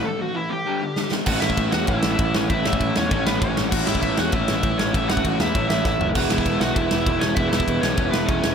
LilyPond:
<<
  \new Staff \with { instrumentName = "Lead electric guitar" } { \time 4/4 \key a \major \tempo 4 = 197 a'8 fis'8 e'8 g'2 r8 | <fis' fis''>8 <e' e''>4 <fis' fis''>8 <e' e''>8. <e' e''>8. <cis' cis''>8 | <e' e''>8 <e' e''>4 <cis' cis''>4 <b b'>8 <cis' cis''>8. r16 | <fis' fis''>8 <e' e''>8 <e' e''>8 <fis' fis''>8 <e' e''>8. <e' e''>8. <cis' cis''>8 |
<e' e''>8 <fis' fis''>4 <e' e''>4 <e' e''>8 <e' e''>8. r16 | <fis' fis''>8 <e' e''>4 <fis' fis''>8 <e' e''>8. <e' e''>8. <cis' cis''>8 | <e' e''>8 <e' e''>4 <cis' cis''>4 <b b'>8 <cis' cis''>8. r16 | }
  \new Staff \with { instrumentName = "Overdriven electric guitar" } { \clef bass \time 4/4 \key a \major <a, e>8 <a, e>8 <a, e>8 <a, e>8 <g, d g>8 <g, d>8 <g, d>8 <g, d>8 | <a, e a cis' e'>2 <a, e a cis' e'>2 | <a, e a cis' e'>2 <a, e a cis' e'>2 | <a, e a cis' e'>2 <a, e a cis' e'>2 |
<a, e a cis' e'>2 <a, e a cis' e'>2 | <e gis b e'>2 <e gis b e'>2 | <e gis b e'>2 <e gis b e'>2 | }
  \new Staff \with { instrumentName = "Picked electric bass" } { \clef bass \time 4/4 \key a \major r1 | a,,8 a,,8 a,,8 e,8 a,,8 a,,8 a,,8 a,,8 | a,,8 a,,8 a,,8 e,8 a,,8 a,,8 a,,8 a,,8 | a,,8 a,,8 a,,8 e,8 a,,8 a,,8 a,,8 a,,8 |
a,,8 a,,8 a,,8 e,8 a,,8 a,,8 a,,8 fis,,8 | e,,8 e,,8 e,,8 b,,8 e,,8 e,,8 e,,8 e,,8 | e,,8 e,,8 e,,8 b,,8 e,,8 e,,8 e,,8 e,,8 | }
  \new DrumStaff \with { instrumentName = "Drums" } \drummode { \time 4/4 r4 r4 r4 sn8 sn8 | <cymc bd>8 sn16 bd16 <bd cymr>8 sn8 <bd cymr>8 sn8 <bd cymr>8 sn8 | <bd cymr>8 sn16 bd16 <bd cymr>8 sn8 <bd cymr>8 sn8 <bd cymr>8 sn8 | <cymc bd>8 sn16 bd16 <bd cymr>8 sn8 <bd cymr>8 sn8 <bd cymr>8 sn8 |
<bd cymr>8 sn16 bd16 <bd cymr>8 sn8 <bd cymr>8 sn8 <bd sn>8 tomfh8 | <cymc bd>8 sn16 bd16 <bd cymr>8 sn8 <bd cymr>8 sn8 <bd cymr>8 sn8 | <bd cymr>8 sn16 bd16 <bd cymr>8 sn8 <bd cymr>8 sn8 <bd cymr>8 sn8 | }
>>